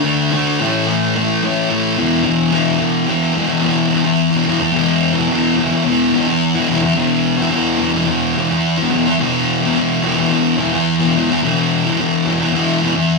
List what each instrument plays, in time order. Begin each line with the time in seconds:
0.03 distorted electric guitar D3 A3 D4
0.32 distorted electric guitar D3 A3 D4
0.59 distorted electric guitar A2 E3 A3
0.87 distorted electric guitar A2 E3 A3
1.16 distorted electric guitar A2 E3 A3
1.43 distorted electric guitar A2 E3 A3
1.70 distorted electric guitar A2 E3 A3
1.97 distorted electric guitar E2 B2 E3
2.24 distorted electric guitar E2 B2 E3
2.51 distorted electric guitar E2 B2 E3
2.79 distorted electric guitar E2 B2 E3
3.05 distorted electric guitar E2 B2
3.10 distorted electric guitar E3
3.34 distorted electric guitar E2 B2 E3
3.48 distorted electric guitar E3
3.53 distorted electric guitar B2
3.62 distorted electric guitar E2 B2
3.66 distorted electric guitar E3
3.89 distorted electric guitar E2 B2
3.94 distorted electric guitar E3
4.04 muted distorted electric guitar stroke
4.31 distorted electric guitar E3
4.35 distorted electric guitar B2
4.45 distorted electric guitar E2 B2
4.49 distorted electric guitar E3
4.59 muted distorted electric guitar stroke
4.72 distorted electric guitar E2 B2
4.78 distorted electric guitar E3
5.13 distorted electric guitar E3
5.19 distorted electric guitar B2
5.28 distorted electric guitar E2 B2
5.34 distorted electric guitar E3
5.56 distorted electric guitar E2 B2
5.61 distorted electric guitar E3
5.71 distorted electric guitar B2 E3
5.84 distorted electric guitar E2 B2
5.89 distorted electric guitar E3
6.12 distorted electric guitar E2 B2
6.16 distorted electric guitar E3
6.28 muted distorted electric guitar stroke
6.54 distorted electric guitar E3
6.59 distorted electric guitar B2
6.69 distorted electric guitar E2 B2
6.74 distorted electric guitar E3
6.83 muted distorted electric guitar stroke
6.95 distorted electric guitar E2 B2
6.99 distorted electric guitar E3
7.37 distorted electric guitar E3
7.42 distorted electric guitar B2
7.50 distorted electric guitar E2 B2
7.55 distorted electric guitar E3
7.78 distorted electric guitar E2 B2
7.83 distorted electric guitar E3
7.93 distorted electric guitar E3
7.97 distorted electric guitar B2
8.06 distorted electric guitar E2 B2
8.11 distorted electric guitar E3
8.35 distorted electric guitar E2 B2
8.39 distorted electric guitar E3
8.50 muted distorted electric guitar stroke
8.77 distorted electric guitar E3
8.82 distorted electric guitar B2
8.90 distorted electric guitar E2 B2
8.95 distorted electric guitar E3
9.06 muted distorted electric guitar stroke
9.19 distorted electric guitar E2 B2
9.23 distorted electric guitar E3
9.61 distorted electric guitar E3
9.66 distorted electric guitar B2
9.75 distorted electric guitar E2 B2
9.79 distorted electric guitar E3
10.02 distorted electric guitar E2 B2
10.06 distorted electric guitar E3
10.15 distorted electric guitar E3
10.20 distorted electric guitar B2
10.29 distorted electric guitar E2 B2
10.34 distorted electric guitar E3
10.57 distorted electric guitar E2 B2
10.61 distorted electric guitar E3
10.72 muted distorted electric guitar stroke
10.99 distorted electric guitar E3
11.04 distorted electric guitar B2
11.15 distorted electric guitar E2 B2 E3
11.30 muted distorted electric guitar stroke
11.42 distorted electric guitar E2 B2
11.46 distorted electric guitar E3
11.85 distorted electric guitar E3
11.89 distorted electric guitar B2
11.97 distorted electric guitar E2 B2
12.02 distorted electric guitar E3
12.25 distorted electric guitar E2 B2
12.30 distorted electric guitar E3
12.40 distorted electric guitar E3
12.44 distorted electric guitar B2
12.53 distorted electric guitar E2 B2
12.57 distorted electric guitar E3
12.81 distorted electric guitar E2 B2
12.86 distorted electric guitar E3
12.96 muted distorted electric guitar stroke